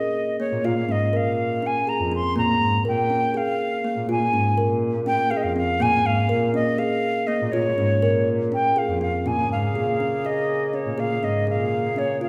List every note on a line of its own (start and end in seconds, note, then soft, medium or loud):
0.00 0.20 G#4 medium
0.00 0.37 D#5 medium
0.40 0.55 A#3 soft
0.40 0.66 C#5 medium
0.52 0.61 A#2 medium
0.64 0.74 A#2 medium
0.64 0.79 F4 medium
0.64 0.93 F5 medium
0.77 0.86 A#2 medium
0.89 0.98 G#2 medium
0.89 1.04 C#4 medium
0.89 1.18 D#5 medium
1.13 1.80 A#2 medium
1.13 1.43 A#4 medium
1.13 1.68 F5 medium
1.62 1.77 C#4 medium
1.67 1.91 G#5 medium
1.87 2.02 G#4 medium
1.87 2.13 A#5 medium
1.99 2.19 F2 medium
2.12 2.27 C4 medium
2.12 2.37 C6 medium
2.36 2.46 A#2 medium
2.36 2.66 A#3 medium
2.36 2.83 A#5 medium
2.49 2.59 A#2 medium
2.61 2.80 G#2 medium
2.85 3.05 A#2 medium
2.85 3.00 A#4 medium
2.85 3.39 G5 medium
3.10 3.25 C#4 medium
3.34 3.64 G#4 medium
3.34 4.10 F5 medium
3.84 3.99 A#3 medium
3.97 4.06 A#2 medium
4.08 4.18 A#2 medium
4.08 4.24 F4 medium
4.08 4.78 G#5 medium
4.21 4.31 A#2 medium
4.33 4.43 G#2 medium
4.33 4.48 C#4 medium
4.58 5.25 A#2 medium
4.58 4.88 A#4 medium
5.06 5.21 C#4 medium
5.06 5.32 G5 medium
5.31 5.46 G#4 medium
5.31 5.38 F5 medium
5.37 5.45 D#5 medium
5.43 5.63 F2 medium
5.43 5.56 F5 medium
5.56 5.71 C4 medium
5.56 5.84 F5 medium
5.80 5.91 A#2 medium
5.80 6.10 A#3 medium
5.80 6.08 G#5 medium
5.94 6.03 A#2 medium
6.05 6.24 G#2 medium
6.05 6.54 F5 medium
6.29 6.50 A#2 medium
6.29 6.44 A#4 medium
6.54 6.69 C#4 medium
6.54 6.80 D#5 medium
6.78 7.09 G#4 medium
6.78 7.28 F5 medium
7.27 7.43 A#3 medium
7.27 7.53 D#5 medium
7.41 7.51 A#2 medium
7.52 7.63 A#2 medium
7.52 7.68 F4 medium
7.52 8.29 C#5 medium
7.65 7.75 A#2 medium
7.77 7.87 G#2 medium
7.77 7.93 C#4 medium
8.02 8.69 A#2 medium
8.02 8.32 A#4 medium
8.52 8.67 C#4 medium
8.52 8.80 G5 medium
8.76 8.91 G#4 medium
8.76 9.02 F5 medium
8.89 9.08 F2 medium
9.01 9.16 C4 medium
9.01 9.29 F5 medium
9.25 9.35 A#2 medium
9.25 12.29 C#3 soft
9.25 12.29 A#3 soft
9.25 9.56 C#4 medium
9.25 12.29 G#4 medium
9.25 9.51 G#5 medium
9.38 9.48 A#2 medium
9.50 9.70 G#2 medium
9.50 10.28 F5 medium
9.75 9.94 A#2 medium
9.75 9.90 G#4 medium
10.00 10.15 C#4 medium
10.25 10.54 G#4 medium
10.25 10.76 D#5 medium
10.73 10.88 C#4 medium
10.73 11.01 C#5 medium
10.86 10.95 A#2 medium
10.98 11.08 A#2 medium
10.98 11.13 G#4 medium
10.98 11.26 F5 medium
11.11 11.20 A#2 medium
11.23 11.33 G#2 medium
11.23 11.38 C#4 medium
11.23 11.48 D#5 medium
11.47 12.15 A#2 medium
11.47 11.77 G#4 medium
11.47 12.00 F5 medium
11.96 12.11 C#4 medium
11.96 12.22 C#5 medium
12.21 12.29 F4 medium
12.21 12.29 F5 medium